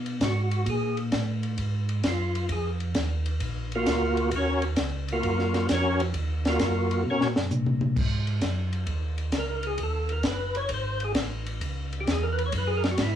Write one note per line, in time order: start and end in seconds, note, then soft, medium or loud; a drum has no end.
0.00 0.20 B2 medium
0.06 ride medium
0.20 0.65 G#2 medium
0.20 0.66 F#4 medium
0.20 kick soft
0.20 snare medium
0.20 hi-hat pedal medium
0.20 ride medium
0.51 ride medium
0.66 1.11 A#2 medium
0.66 0.99 G#4 medium
0.66 kick soft
0.66 ride medium
0.97 ride soft
1.12 1.57 A2 loud
1.12 kick soft
1.12 snare medium
1.12 hi-hat pedal medium
1.12 ride medium
1.43 ride soft
1.58 2.03 G#2 medium
1.58 kick soft
1.58 ride medium
1.89 ride medium
2.03 2.48 F#2 medium
2.03 kick soft
2.03 snare medium
2.03 hi-hat pedal medium
2.03 ride medium
2.08 2.49 F4 medium
2.35 ride medium
2.49 2.94 F2 medium
2.49 2.70 G#4 medium
2.49 kick soft
2.49 ride medium
2.80 ride soft
2.95 3.40 D#2 loud
2.95 kick soft
2.95 snare medium
2.95 hi-hat pedal medium
2.95 ride medium
3.26 ride medium
3.40 3.86 A#1 medium
3.40 kick soft
3.40 ride medium
3.72 4.30 A#3 medium
3.72 4.30 F4 medium
3.72 4.30 A#4 loud
3.72 ride soft
3.76 4.30 F#4 medium
3.86 4.31 D2 medium
3.86 kick soft
3.86 snare medium
3.86 hi-hat pedal medium
3.86 ride medium
4.17 ride medium
4.31 4.77 D#2 medium
4.31 kick soft
4.31 ride medium
4.36 4.65 C#4 medium
4.36 4.64 F#4 medium
4.36 4.65 A#4 medium
4.36 4.65 C#5 medium
4.62 ride medium
4.76 5.22 C#2 loud
4.76 kick soft
4.76 snare medium
4.76 hi-hat pedal medium
4.76 ride medium
5.08 ride medium
5.12 5.67 A#3 medium
5.12 5.67 F4 medium
5.12 5.67 F#4 medium
5.12 5.67 A#4 medium
5.23 5.68 F#2 medium
5.23 kick soft
5.23 ride medium
5.39 snare soft
5.54 snare soft
5.54 ride soft
5.69 6.13 F2 medium
5.69 kick soft
5.69 snare medium
5.69 hi-hat pedal medium
5.69 ride medium
5.73 6.02 C#4 medium
5.73 6.02 F#4 medium
5.73 6.02 A#4 medium
5.73 6.01 C#5 medium
6.00 ride medium
6.14 6.59 D#2 medium
6.14 kick soft
6.14 ride medium
6.45 7.03 A#3 medium
6.45 7.04 F4 medium
6.45 7.03 F#4 medium
6.45 7.03 A#4 medium
6.45 snare medium
6.45 ride medium
6.59 7.05 F#2 loud
6.59 kick soft
6.59 snare medium
6.59 hi-hat pedal medium
6.59 ride medium
6.91 ride medium
7.05 7.20 B2 medium
7.10 7.28 C#4 medium
7.10 7.28 F#4 medium
7.10 7.28 A#4 medium
7.10 7.28 C#5 loud
7.21 7.37 A#2 medium
7.21 snare medium
7.36 7.51 F#2 medium
7.36 snare medium
7.50 7.96 A#2 medium
7.50 floor tom medium
7.50 hi-hat pedal medium
7.66 floor tom medium
7.81 floor tom loud
7.96 8.41 G#2 medium
7.96 kick medium
7.96 crash medium
8.27 ride soft
8.41 8.87 F#2 loud
8.41 kick soft
8.41 snare medium
8.41 hi-hat pedal medium
8.41 ride medium
8.73 ride soft
8.87 9.32 D#2 medium
8.87 kick soft
8.87 ride medium
9.18 ride soft
9.32 9.78 C#2 medium
9.32 kick soft
9.32 snare medium
9.32 hi-hat pedal medium
9.32 ride medium
9.38 9.66 A#4 medium
9.63 9.80 G#4 medium
9.63 ride soft
9.78 10.23 D#2 medium
9.78 kick soft
9.78 ride medium
9.83 10.12 A4 medium
10.09 10.26 A#4 medium
10.09 ride soft
10.23 10.69 F#1 loud
10.23 10.56 B4 medium
10.23 kick soft
10.23 snare medium
10.23 hi-hat pedal medium
10.23 ride medium
10.55 10.71 C#5 loud
10.55 ride medium
10.69 11.15 G#1 medium
10.69 kick soft
10.69 ride medium
10.74 11.03 C5 medium
11.00 ride medium
11.04 11.12 G#4 loud
11.15 11.60 A1 medium
11.15 kick soft
11.15 snare medium
11.15 hi-hat pedal medium
11.15 ride medium
11.46 ride soft
11.61 12.06 C#2 medium
11.61 kick soft
11.61 ride medium
11.93 ride soft
12.00 12.08 G4 medium
12.07 12.52 E2 loud
12.07 kick soft
12.07 snare medium
12.07 hi-hat pedal medium
12.07 ride medium
12.12 12.25 G#4 medium
12.23 12.38 A#4 medium
12.32 12.43 B4 medium
12.38 ride medium
12.46 12.53 C#5 loud
12.52 12.97 F#2 medium
12.52 kick soft
12.52 ride medium
12.58 12.71 B4 medium
12.67 12.83 G#4 medium
12.77 12.88 A#4 loud
12.84 snare medium
12.84 ride medium
12.91 12.99 F#4 medium
12.98 13.15 G#2 medium
12.98 kick soft
12.98 snare medium
12.98 hi-hat pedal medium
12.98 ride medium
13.03 13.15 E4 medium